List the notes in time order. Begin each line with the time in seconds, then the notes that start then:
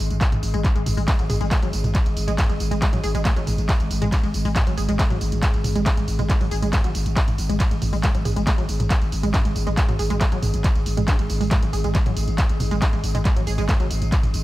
Already playing: G#2 G#3
0.10 G#1, closed hi-hat, tambourine
0.21 kick, clap, closed hi-hat, tambourine
0.32 G#1, closed hi-hat, mid tom, tambourine
0.43 G#1, open hi-hat, tambourine
0.54 G#1 G#3, closed hi-hat, tambourine
0.64 kick, clap, closed hi-hat, tambourine
0.75 G#1 G#3, closed hi-hat, tambourine
0.86 G#1, mid tom, open hi-hat, tambourine
0.97 G#1 G#3, open hi-hat, tambourine
1.08 G#3, kick, clap, closed hi-hat, ride, tambourine
1.19 G#1 F#3, closed hi-hat, tambourine
1.30 G#1 G#4, mid tom, open hi-hat, tambourine
1.41 G#1 G#3, closed hi-hat, tambourine
1.51 A3, kick, clap, closed hi-hat, ride, tambourine
1.62 G#1 F#3, closed hi-hat, tambourine
1.73 G#1, open hi-hat, tambourine
1.84 G#1, closed hi-hat, mid tom, tambourine
1.95 kick, clap, closed hi-hat, ride, tambourine
2.06 G#1, closed hi-hat, tambourine
2.17 G#1, open hi-hat, tambourine
2.28 G#1 G#3, closed hi-hat, tambourine
2.38 kick, clap, closed hi-hat, mid tom, ride, tambourine
2.49 G#1 G#3, closed hi-hat, tambourine
2.60 G#1, open hi-hat, tambourine
2.71 G#1 G#3, closed hi-hat, tambourine
2.82 G#3, kick, clap, closed hi-hat, ride, tambourine
2.93 G#1 F#3, closed hi-hat, mid tom, tambourine
3.03 G#1 G#4, open hi-hat, tambourine
3.15 G#1 G#3, closed hi-hat, tambourine
3.25 A3, kick, clap, closed hi-hat, ride, tambourine
3.36 G#1 F#3, closed hi-hat, tambourine
3.47 G#1, mid tom, open hi-hat, tambourine
3.58 G#1, closed hi-hat, tambourine
3.69 kick, clap, closed hi-hat, ride, tambourine
3.80 G#1, closed hi-hat, tambourine
3.90 G#1, open hi-hat, tambourine
4.02 G#1 G#3, closed hi-hat, mid tom, tambourine
4.12 kick, clap, closed hi-hat, ride, tambourine
4.23 G#1 G#3, closed hi-hat, tambourine
4.34 G#1, open hi-hat, tambourine
4.45 G#1 G#3, open hi-hat, tambourine
4.56 G#3, kick, clap, closed hi-hat, mid tom, ride, tambourine
4.67 G#1 F#3, closed hi-hat, tambourine
4.77 G#1 G#4, open hi-hat, tambourine
4.89 G#1 G#3, closed hi-hat, tambourine
4.99 A3, kick, clap, closed hi-hat, ride, tambourine
5.10 G#1 F#3, closed hi-hat, mid tom, tambourine
5.21 G#1, open hi-hat, tambourine
5.32 G#1, closed hi-hat, tambourine
5.43 kick, clap, closed hi-hat, ride, tambourine
5.54 G#1, closed hi-hat, tambourine
5.64 G#1, mid tom, open hi-hat, tambourine
5.76 G#1 G#3, closed hi-hat, tambourine
5.86 kick, clap, closed hi-hat, ride, tambourine
5.97 G#1 G#3, closed hi-hat, tambourine
6.08 G#1, open hi-hat, tambourine
6.19 G#1 G#3, closed hi-hat, mid tom, tambourine
6.30 G#3, kick, clap, closed hi-hat, ride, tambourine
6.41 G#1 F#3, open hi-hat, tambourine
6.51 G#1 G#4, open hi-hat, tambourine
6.62 G#1 G#3, closed hi-hat, tambourine
6.73 A3, kick, clap, closed hi-hat, mid tom, ride, tambourine
6.84 G#1 F#3, closed hi-hat, tambourine
6.95 G#1, open hi-hat, tambourine
7.06 G#1, closed hi-hat, tambourine
7.17 kick, clap, closed hi-hat, ride, tambourine
7.28 G#1, closed hi-hat, mid tom, tambourine
7.38 G#1, open hi-hat, tambourine
7.49 G#1 G#3, closed hi-hat, tambourine
7.60 kick, clap, closed hi-hat, ride, tambourine
7.71 G#1 G#3, closed hi-hat, tambourine
7.82 G#1, mid tom, open hi-hat, tambourine
7.93 G#1 G#3, open hi-hat, tambourine
8.03 G#2 G#3, kick, clap, closed hi-hat, ride, tambourine
8.15 G#1 F#3, closed hi-hat, tambourine
8.25 G#1 G#4, mid tom, open hi-hat, tambourine
8.36 G#1 G#3, closed hi-hat, tambourine
8.47 A3, kick, clap, closed hi-hat, ride, tambourine
8.58 G#1 F#3, closed hi-hat, tambourine
8.69 G#1, open hi-hat, tambourine
8.80 G#1, closed hi-hat, mid tom, tambourine
8.90 kick, clap, closed hi-hat, ride, tambourine
9.02 G#1, closed hi-hat, tambourine
9.12 G#1, open hi-hat, tambourine
9.23 G#1 G#3, closed hi-hat, tambourine
9.34 D4, kick, clap, closed hi-hat, mid tom, ride, tambourine
9.45 G#1 G#3, closed hi-hat, tambourine
9.56 G#1, open hi-hat, tambourine
9.67 G#1 G#3, closed hi-hat, tambourine
9.77 G#3, kick, clap, closed hi-hat, ride, tambourine
9.88 G#1 F#3, closed hi-hat, mid tom, tambourine
9.99 G#1 G#4, open hi-hat, tambourine
10.10 G#1 G#3, closed hi-hat
10.21 A3, kick, clap, closed hi-hat, ride, tambourine
10.32 G#1 F#3, closed hi-hat, tambourine
10.43 G#1, mid tom, open hi-hat, tambourine
10.53 G#1, closed hi-hat, tambourine
10.64 kick, clap, closed hi-hat, ride, tambourine
10.75 G#1, closed hi-hat, tambourine
10.86 G#1, open hi-hat, tambourine
10.97 G#1 G#3, closed hi-hat, mid tom, tambourine
11.08 D4, kick, clap, closed hi-hat, ride, tambourine
11.19 G#1 G#3, closed hi-hat, tambourine
11.29 G#1, open hi-hat, tambourine
11.41 G#1 G#3, open hi-hat, tambourine
11.51 G#3, kick, clap, closed hi-hat, mid tom, ride, tambourine
11.62 G#1 F#3, closed hi-hat, tambourine
11.73 G#1 G#4, open hi-hat, tambourine
11.84 G#1 G#3, closed hi-hat, tambourine
11.95 A3, kick, clap, closed hi-hat, ride, tambourine
12.06 G#1 F#3, closed hi-hat, mid tom, tambourine
12.16 G#1, open hi-hat, tambourine
12.28 G#1, closed hi-hat, tambourine
12.38 kick, clap, closed hi-hat, ride, tambourine
12.49 G#1, closed hi-hat, tambourine
12.60 G#1, mid tom, open hi-hat, tambourine
12.71 G#1 G#3, closed hi-hat, tambourine
12.82 D4, kick, clap, closed hi-hat, ride, tambourine
12.93 G#1 G#3, closed hi-hat, tambourine
13.04 G#1, open hi-hat, tambourine
13.15 G#1 G#3, closed hi-hat, mid tom, tambourine
13.25 G#3, kick, clap, closed hi-hat, ride, tambourine
13.36 G#1 F#3, closed hi-hat, tambourine
13.47 G#1 G#4, open hi-hat, tambourine
13.58 G#1 G#3, closed hi-hat, tambourine
13.69 A3, kick, clap, closed hi-hat, mid tom, ride, tambourine
13.80 G#1 F#3, closed hi-hat, tambourine
13.91 G#1, open hi-hat, tambourine
14.02 G#1, closed hi-hat, tambourine
14.12 kick, clap, closed hi-hat, ride, tambourine
14.23 G#1, closed hi-hat, mid tom, tambourine
14.34 G#1, open hi-hat, tambourine